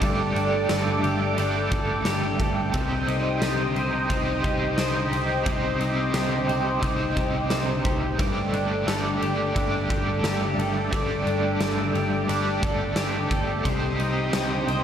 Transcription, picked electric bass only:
0.02 0.31 G1 loud
0.35 0.66 G1 loud
0.70 1.00 G1 loud
1.04 1.34 G1 loud
1.38 1.68 G1 medium
1.72 2.02 G1 medium
2.06 2.36 G1 loud
2.40 2.70 G1 loud
2.74 3.04 C2 loud
3.08 3.38 C2 medium
3.42 3.72 C2 loud
3.76 4.06 C2 loud
4.10 4.40 C2 loud
4.44 4.74 C2 medium
4.78 5.08 C2 loud
5.11 5.42 C2 loud
5.46 5.76 C2 loud
5.80 6.10 C2 loud
6.14 6.44 C2 medium
6.48 6.79 C2 loud
6.83 7.13 C2 loud
7.17 7.47 C2 medium
7.50 7.81 C2 loud
7.85 8.19 C2 medium
8.19 8.49 G1 loud
8.53 8.83 G1 loud
8.87 9.17 G1 loud
9.22 9.52 G1 medium
9.56 9.86 G1 loud
9.90 10.20 G1 medium
10.23 10.54 G1 loud
10.58 10.88 G1 loud
10.93 11.22 G1 loud
11.26 11.56 G1 loud
11.61 11.91 G1 loud
11.94 12.24 G1 medium
12.29 12.59 G1 loud
12.63 12.93 G1 medium
12.97 13.27 G1 loud
13.31 13.61 G1 loud
13.65 13.95 C2 loud
13.99 14.29 C2 medium
14.34 14.64 C2 loud
14.68 14.84 C2 loud

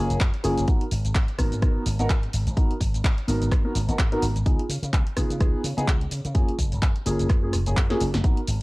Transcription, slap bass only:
0.11 0.17 F#1 medium
0.21 0.30 F#2 loud
0.45 0.53 F#1 medium
0.58 0.65 F#1 medium
0.92 1.01 G#1 medium
1.05 1.12 G#1 loud
1.39 1.48 G#1 medium
1.53 1.64 G#1 medium
1.62 1.71 G#2 medium
1.76 muted slap bass stroke soft
1.86 1.95 G#1 loud
1.99 2.06 G#1 medium
2.34 2.42 G#1 medium
2.47 2.53 G#1 loud
2.70 muted slap bass stroke soft
2.81 2.89 G#1 medium
2.94 3.01 G#1 loud
3.04 3.13 G#2 medium
3.28 3.37 G#1 medium
3.42 3.53 G#1 medium
3.65 muted slap bass stroke soft
3.75 3.84 G#1 loud
3.88 3.95 G#1 medium
3.99 4.15 G#2 medium
4.22 4.31 G#1 medium
4.36 4.43 G#1 loud
4.69 4.78 C#3 medium
4.83 4.90 C#3 loud
4.93 5.02 C#2 medium
5.17 5.26 C#3 medium
5.30 5.42 C#3 medium
5.41 5.49 C#2 medium
5.54 muted slap bass stroke soft
5.64 5.73 C#3 loud
5.78 5.84 C#3 medium
5.88 6.04 C#2 medium
6.11 6.20 C#3 medium
6.25 6.32 C#3 loud
6.35 6.44 F#2 loud
6.48 muted slap bass stroke soft
6.59 6.67 F#1 medium
6.73 6.79 F#1 loud
6.82 6.91 F#2 medium
7.06 7.15 F#1 medium
7.20 7.26 F#1 medium
7.54 7.62 F#1 medium
7.67 7.73 F#1 loud
7.77 7.93 F#2 loud
8.01 8.09 F#1 medium
8.14 8.21 F#1 medium
8.48 8.57 G#1 medium

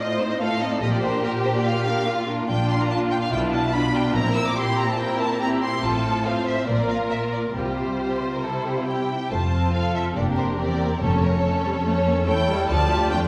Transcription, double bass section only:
0.82 1.21 A#1 soft
2.49 2.87 A#1 soft
3.32 3.71 B1 medium
4.16 4.54 A#1 soft
5.83 6.23 A1 soft
6.68 7.08 A#1 soft
7.54 7.96 C2 soft
9.31 9.71 F1 soft
10.16 10.56 F1 soft
11.01 11.40 F1 soft
12.69 13.08 D2 soft

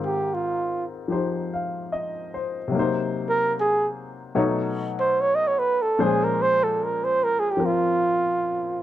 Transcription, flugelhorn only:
0.05 0.35 G4 medium
0.34 0.86 F4 medium
3.29 3.54 A#4 medium
3.60 3.90 G#4 medium
5.00 5.22 C5 medium
5.21 5.37 C#5 medium
5.35 5.49 D#5 medium
5.48 5.60 C#5 medium
5.59 5.83 B4 medium
5.82 6.05 A4 medium
6.03 6.25 G#4 medium
6.24 6.43 A#4 medium
6.42 6.65 C5 loud
6.63 6.85 A4 medium
6.84 7.06 A#4 medium
7.04 7.25 C5 medium
7.24 7.41 A#4 medium
7.40 7.52 G#4 medium
7.51 7.67 G4 medium
7.65 8.83 F4 medium

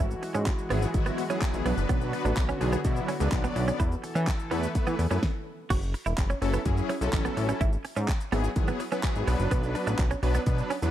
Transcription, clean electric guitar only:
0.23 muted clean electric guitar stroke soft
0.35 0.44 C#4 medium
0.70 0.79 B3 medium
1.06 1.15 B3 medium
1.18 muted clean electric guitar stroke soft
1.30 1.39 C#4 medium
1.66 1.75 B3 medium
1.89 1.98 B3 medium
2.13 muted clean electric guitar stroke medium
2.25 2.34 D4 medium
2.49 2.58 C#4 medium
2.61 muted clean electric guitar stroke soft
2.73 2.82 B3 medium
3.08 3.17 C#4 medium
3.44 3.53 B3 medium
3.56 muted clean electric guitar stroke soft
3.68 3.77 C#4 medium
3.80 3.89 E4 medium
4.04 muted clean electric guitar stroke soft
4.15 4.25 C#4 medium
4.51 4.60 B3 medium
4.87 4.96 B3 medium
4.99 muted clean electric guitar stroke soft
5.11 5.20 C#4 medium
5.70 5.79 F#4 medium
5.94 muted clean electric guitar stroke soft
6.06 6.15 E4 medium
6.30 6.39 C#4 medium
6.42 muted clean electric guitar stroke soft
6.54 6.63 B3 medium
6.89 6.98 C#4 medium
7.25 7.34 B3 medium
7.37 muted clean electric guitar stroke soft
7.49 7.58 C#4 medium
7.61 7.70 E4 medium
7.85 muted clean electric guitar stroke soft
7.96 8.06 C#4 medium
8.32 8.41 B3 medium
8.68 8.77 B3 medium
8.80 muted clean electric guitar stroke soft
8.92 9.01 C#4 medium
9.28 9.37 B3 medium
9.51 9.60 B3 medium
9.75 muted clean electric guitar stroke medium
9.87 9.96 D4 medium
10.11 10.20 C#4 medium
10.23 muted clean electric guitar stroke soft
10.35 10.44 B3 medium
10.70 10.79 C#4 medium

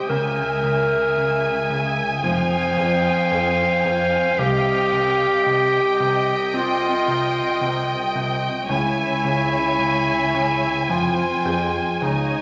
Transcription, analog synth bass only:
0.10 0.42 C#3 medium
0.64 0.96 C#3 medium
1.17 1.49 C#3 soft
1.70 2.02 C#3 medium
2.24 2.56 F3 medium
2.77 3.10 F2 medium
3.31 3.64 F2 medium
3.85 4.17 F2 medium
4.39 4.71 C3 medium
4.93 5.25 C3 medium
5.46 5.79 C3 soft
6.00 6.32 C3 medium
6.54 6.86 C4 medium
7.08 7.40 C3 medium
7.61 7.94 C3 medium
8.15 8.48 C3 medium
8.70 9.02 C#3 medium
9.25 9.58 C#3 soft
9.79 10.12 C#3 soft
10.35 10.68 C#3 medium
10.90 11.23 F3 soft
11.45 11.79 F2 soft
12.02 12.36 C#3 medium

